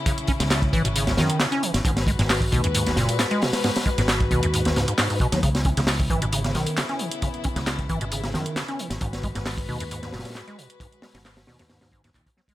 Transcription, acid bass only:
\new Staff \with { instrumentName = "Acid bass" } { \clef bass \time 4/4 \key cis \minor \tempo 4 = 134 cis16 r16 cis'16 cis16 r8 e16 b,16 cis16 cis,16 dis8 cis16 cis'16 e16 r16 | gis,16 r16 gis16 gis,16 r8 b,16 fis,16 gis,16 gis,,16 ais,8 gis,16 gis16 b,16 r16 | gis,16 r16 gis16 gis,16 r8 b,16 fis,16 gis,16 gis,,16 gis,16 gis,16 gis,16 gis,16 b,16 fis16 | cis16 r16 cis'16 cis16 r8 e16 b,16 cis16 cis16 dis8 cis16 cis'16 e16 r16 |
cis16 r16 cis'16 cis16 r8 e16 b,16 cis16 cis16 dis8 cis16 cis'16 e16 r16 | gis,16 r16 gis16 gis,16 r8 b,16 fis,16 gis,16 gis,16 ais,8 gis,16 gis16 b,16 r16 | gis,16 r16 gis16 gis,16 r8 b,16 fis,16 gis,16 gis,16 gis,16 gis,16 ais,16 gis,16 fis16 gis16 | }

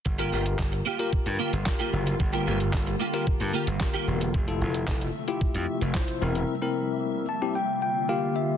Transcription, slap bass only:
\new Staff \with { instrumentName = "Slap bass" } { \clef bass \time 4/4 \key g \dorian \tempo 4 = 112 g,,8 g,,8 g,,8 r8. g,16 r16 g,,16 r8 fis,,8 | g,,8 g,,8 r4 r16 g,16 r16 g,,16 r8 e,,8 | f,,8 f,,8 f,,8 r8. f,16 r16 f,,16 r8 e,,8 | r1 | }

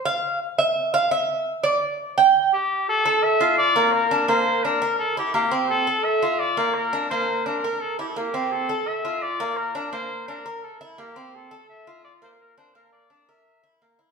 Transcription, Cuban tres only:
\new Staff \with { instrumentName = "Cuban tres" } { \time 4/4 \key bes \lydian \tempo 4 = 170 f''4 r8 e''4 f''8 e''4~ | e''8 d''4. g''4 r4 | r8 a'4 f'4 bes4 d'8 | bes4 d'8 bes'4 e'8 bes8 c'8~ |
c'8 a'4 f'4 bes4 d'8 | bes4 d'8 bes'4 e'8 bes8 c'8~ | c'8 a'4 f'4 bes4 d'8 | bes4 d'8 bes'4 e'8 bes8 c'8~ |
c'8 a'4 f'4 bes4 d'8 | bes4 d'8 bes'4 e'8 bes8 e'8 | }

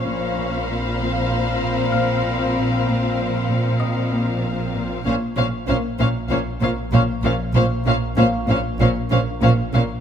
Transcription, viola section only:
\new Staff \with { instrumentName = "Viola section" } { \time 4/4 \key bes \minor \tempo 4 = 96 des'4 c'2.~ | c'1 | des'8 des'8 des'8 des'8 des'8 des'8 des'8 des'8 | des'8 des'8 des'8 des'8 des'8 des'8 des'8 des'8 | }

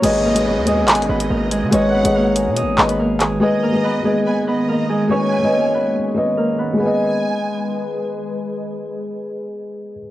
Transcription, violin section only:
\new Staff \with { instrumentName = "Violin section" } { \time 4/4 \key gis \minor \tempo 4 = 142 dis''2 gis''8 dis''4. | fis''2 r2 | dis''2 gis''8 dis''4. | gis''2 r2 |
gis''2. r4 | r1 | }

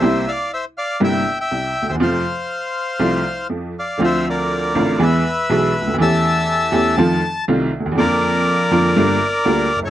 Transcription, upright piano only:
\new Staff \with { instrumentName = "Upright piano" } { \clef bass \time 4/4 \key f \major \tempo 4 = 121 <c, c g bes e'>8 r4. <g,, g, c g bes e'>8 r8 <c, c>8 r32 d,32 ees,32 e,32 | <f, c f a f'>8 r4. <c, c f a f'>8 r8 <f, f>8 r8 | \key d \minor <d, d f c' f'>4. <a,, a, d a c' f'>8 <e, e gis b gis'>8 r8 <b,, b, e gis b gis'>8 r32 cis,32 d,32 ees,32 | <e, e a cis' g'>4. <e, e a cis' g'>8 <f, ees f a c' f'>8 r8 <c, c ees a c' f'>8 r32 d,32 ees,32 e,32 |
<f, d f bes f'>4. <f, d f bes f'>8 <g,, g, d g bes f'>8 r8 <d, d g bes f'>8 r32 fis,,32 g,,32 r32 | }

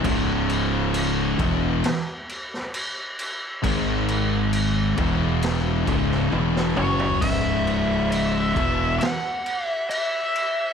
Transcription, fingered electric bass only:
\new Staff \with { instrumentName = "Fingered electric bass" } { \clef bass \time 4/4 \key cis \minor \tempo 4 = 67 cis,,4. e,,8 r2 | gis,,4. e,,4 cis,,8 e,,8 fis,,8 | cis,,4. e,,8 r2 | }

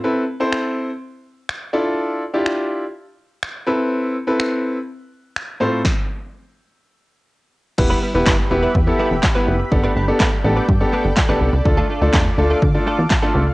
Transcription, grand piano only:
\new Staff \with { instrumentName = "Grand piano" } { \time 4/4 \key a \minor \tempo 4 = 124 <c' e' a' b'>8 r16 <c' e' a' c''>4 r4. r16 <d' e' f' a'>8~ | <d' e' f' a'>8 r16 <d' e' f' g'>4 r4. r16 <c' e' a' b'>8~ | <c' e' a' b'>8 r16 <c' e' a' b'>4 r4. r16 <a, c' f' a' c''>8 | r1 |
<b e' g' b'>8 r16 <b e' g' b'>8 r16 <b e' g' b'>8 r16 <b e' g' a'>8 r8 <b e' g' b'>8 r16 | <b d' g' a'>8 r16 <b d' g' a'>8 r16 <b d' g' a'>8 r16 <b d' g' a'>8 r8 <b d' g' a'>8 r16 | <a d' f' a'>8 r16 <a d' f' a'>8 r16 <a d' f' a'>8 r16 <a d' f' a'>8 r8 <a d' f' a'>8 r16 | }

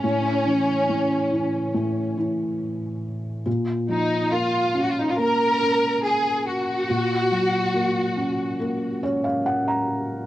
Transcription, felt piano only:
<<
  \new Staff \with { instrumentName = "Felt piano" } { \time 4/4 \key bes \minor \tempo 4 = 70 r1 | r1 | r2 r8 des''16 f''16 ges''16 bes''8. | }
  \new Staff \with { instrumentName = "Felt piano" } { \clef bass \time 4/4 \key bes \minor a,8 e8 a,8 e8 a,8 e4. | bes,8 f8 bes8 des'8 bes8 des'4. | bes,8 ges8 bes8 des'8 bes8 des'4. | }
>>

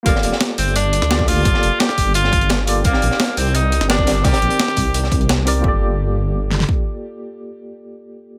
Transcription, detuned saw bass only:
\new Staff \with { instrumentName = "Detuned saw bass" } { \clef bass \time 4/4 \key g \minor \tempo 4 = 172 g,,16 r16 f,,16 r8. g,,4~ g,,16 d,4~ d,16 | g,,16 r16 f,,16 r8. g,,4 g,,4. | c,16 r16 bes,,16 r8. c,4~ c,16 g,,4~ g,,16 | c,16 r16 bes,,16 r8. c,4 c,4. |
g,,2. r4 | r1 | }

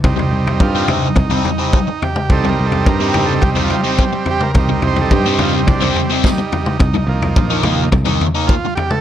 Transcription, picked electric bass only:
\new Staff \with { instrumentName = "Picked electric bass" } { \clef bass \time 4/4 \key c \dorian \tempo 4 = 106 c,8 c,8 g,4 c,8 r4. | c,8 c,8 g,4 c,8 r4. | c,8 c,8 g,4 c,8 r4. | c,8 c,8 bes,,4 c,8 r4. | }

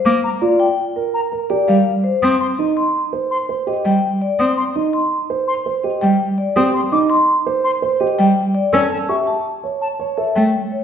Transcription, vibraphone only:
\new Staff \with { instrumentName = "Vibraphone" } { \time 6/4 \key c \dorian \tempo 4 = 166 r4 d''8 g''8 r2 d''8 f''8 r8 c''8 | r4 ees''8 c'''8 r2 ees''8 g''8 r8 d''8 | r4 ees''8 c'''8 r2 ees''8 g''8 r8 d''8 | r4 ees''8 c'''8 r2 ees''8 g''8 r8 d''8 |
r4 e''8 a''8 r2 e''8 g''8 r8 cis''8 | }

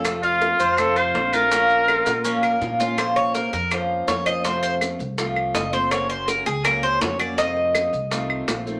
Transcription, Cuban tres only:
\new Staff \with { instrumentName = "Cuban tres" } { \time 4/4 \key bes \minor \tempo 4 = 164 a'8 f''4 c''4 f'4 f'8 | des'4 f'4 des'8 bes'4 f'8 | c''8 des''8 bes'8 bes'8 r4 des''8 ees''8 | c''8 c''8 r2 ees''8 c''8 |
des''8 c''8 bes'8 aes'8 bes'8 c''8 des''8 d''8 | ees''2. r4 | }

